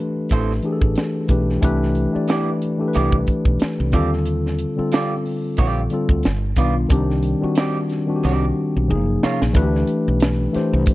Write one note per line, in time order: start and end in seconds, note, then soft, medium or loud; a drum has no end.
0.00 0.63 E3 loud
0.00 0.64 A3 medium
0.00 0.64 D4 loud
0.00 0.65 G4 loud
0.00 0.72 A4 medium
0.00 1.31 B4 loud
0.29 0.59 A1 medium
0.29 0.52 C4 medium
0.29 0.52 E4 medium
0.29 0.52 A4 medium
0.29 0.52 C5 medium
0.29 kick medium
0.29 closed hi-hat medium
0.51 snare soft
0.62 1.23 E3 medium
0.62 1.24 A3 medium
0.62 1.24 D4 medium
0.62 1.24 G4 medium
0.62 0.72 G#4 medium
0.62 closed hi-hat soft
0.72 1.28 A4 medium
0.82 0.95 A1 medium
0.82 kick medium
0.95 snare medium
0.95 closed hi-hat medium
1.28 1.57 B1 medium
1.28 1.59 E3 medium
1.28 1.59 A3 medium
1.28 1.60 D4 medium
1.28 1.60 G4 medium
1.28 1.60 B4 medium
1.28 kick medium
1.28 closed hi-hat medium
1.50 snare soft
1.61 2.06 C2 loud
1.61 2.08 E3 loud
1.61 2.08 A3 loud
1.61 2.08 D4 loud
1.61 2.09 G4 loud
1.61 2.09 B4 loud
1.61 kick loud
1.61 closed hi-hat medium
1.83 snare soft
1.95 closed hi-hat medium
2.12 2.71 E3 medium
2.12 2.72 A3 medium
2.12 2.72 D4 medium
2.12 2.73 G4 medium
2.12 2.73 D5 medium
2.12 muted fretless electric bass stroke soft
2.28 2.49 B3 medium
2.28 2.49 E4 medium
2.28 2.49 G4 medium
2.28 2.50 D5 medium
2.28 snare medium
2.28 closed hi-hat medium
2.62 closed hi-hat medium
2.78 3.93 E3 medium
2.78 3.93 A3 medium
2.78 3.93 D4 medium
2.78 3.94 G4 medium
2.78 2.86 A4 medium
2.88 3.98 B4 medium
2.93 3.23 C2 medium
2.93 3.15 B3 medium
2.93 3.15 E4 medium
2.93 3.15 G4 medium
2.93 3.15 D5 medium
2.93 closed hi-hat medium
3.12 kick medium
3.27 kick medium
3.27 closed hi-hat soft
3.45 3.58 B1 medium
3.45 kick medium
3.60 muted fretless electric bass stroke soft
3.60 snare loud
3.60 closed hi-hat medium
3.80 3.92 C2 medium
3.92 4.64 D#2 medium
3.92 4.67 D3 loud
3.92 4.68 G3 medium
3.92 4.09 C4 medium
3.92 4.68 C4 medium
3.92 4.10 F4 medium
3.92 4.68 F4 medium
3.92 4.10 G4 medium
3.92 4.69 A4 loud
3.92 4.10 D5 medium
3.92 kick medium
3.92 closed hi-hat medium
4.13 snare soft
4.26 closed hi-hat medium
4.46 snare soft
4.58 closed hi-hat medium
4.76 5.79 D3 medium
4.76 5.80 G3 medium
4.76 5.80 C4 medium
4.76 5.81 F4 medium
4.76 5.81 A4 medium
4.76 muted fretless electric bass stroke soft
4.92 5.13 C4 medium
4.92 5.13 F4 medium
4.92 5.13 G4 medium
4.92 5.13 D5 medium
4.92 snare loud
4.92 closed hi-hat medium
5.26 open hi-hat soft
5.57 5.86 A#1 medium
5.57 5.80 C4 medium
5.57 5.80 F4 medium
5.57 5.80 G4 medium
5.57 5.80 D5 medium
5.57 kick medium
5.57 closed hi-hat medium
5.90 6.24 D3 medium
5.90 6.24 G3 medium
5.90 6.25 C4 medium
5.90 6.25 F4 medium
5.90 6.26 A4 medium
5.90 closed hi-hat medium
6.09 6.22 D2 medium
6.09 kick medium
6.23 6.53 G1 loud
6.23 snare medium
6.23 closed hi-hat medium
6.56 6.85 B1 medium
6.56 6.87 D#3 medium
6.56 6.87 G3 medium
6.56 6.87 B3 medium
6.56 6.88 D4 medium
6.56 6.74 D#4 medium
6.56 6.74 F4 medium
6.56 6.88 F4 medium
6.56 6.74 B4 medium
6.56 6.74 D5 medium
6.56 kick medium
6.56 closed hi-hat medium
6.89 7.33 C2 loud
6.89 7.35 D#3 loud
6.89 7.35 G3 loud
6.89 7.36 C4 loud
6.89 7.36 D4 loud
6.89 7.37 G4 loud
6.89 kick loud
6.89 closed hi-hat medium
7.10 snare soft
7.23 closed hi-hat medium
7.40 7.99 D#3 medium
7.40 8.00 G3 medium
7.40 8.00 C4 medium
7.40 8.01 D4 medium
7.40 8.01 F#4 loud
7.40 muted fretless electric bass stroke soft
7.55 7.77 C4 medium
7.55 7.77 D#4 medium
7.55 7.77 G4 medium
7.55 7.78 D5 medium
7.55 snare loud
7.55 closed hi-hat medium
7.90 snare soft
7.90 closed hi-hat medium
8.06 8.88 D#3 medium
8.06 8.88 G3 medium
8.06 8.88 C4 medium
8.06 8.89 D4 medium
8.06 8.14 F#4 medium
8.16 8.92 G4 medium
8.24 8.51 C2 medium
8.24 8.44 C4 medium
8.24 8.45 D#4 medium
8.24 8.45 G4 medium
8.24 8.45 D5 loud
8.76 8.92 B1 medium
8.88 9.17 F#1 loud
8.88 9.48 C3 medium
8.88 9.48 F3 medium
8.88 8.96 G#3 medium
8.88 9.49 D#4 medium
8.88 9.49 G#4 loud
8.95 9.52 A#3 medium
9.23 9.38 C#4 medium
9.23 9.39 F4 medium
9.23 9.39 A#4 medium
9.23 9.39 C#5 medium
9.23 muted fretless electric bass stroke soft
9.23 snare medium
9.42 9.53 A#1 medium
9.42 snare medium
9.53 9.83 D2 loud
9.53 10.43 E3 loud
9.53 10.44 A3 loud
9.53 10.44 D4 loud
9.53 9.62 F#4 medium
9.53 10.45 B4 loud
9.53 kick loud
9.53 closed hi-hat medium
9.63 10.48 G4 loud
9.75 snare soft
9.87 closed hi-hat medium
10.08 10.46 B1 medium
10.20 snare loud
10.20 closed hi-hat medium
10.53 10.94 E3 medium
10.53 10.94 A3 medium
10.53 10.94 D4 medium
10.53 10.94 G4 medium
10.53 10.94 C5 loud
10.53 muted fretless electric bass stroke soft
10.53 snare soft
10.53 closed hi-hat medium
10.73 10.85 C2 loud
10.86 kick loud
10.86 closed hi-hat medium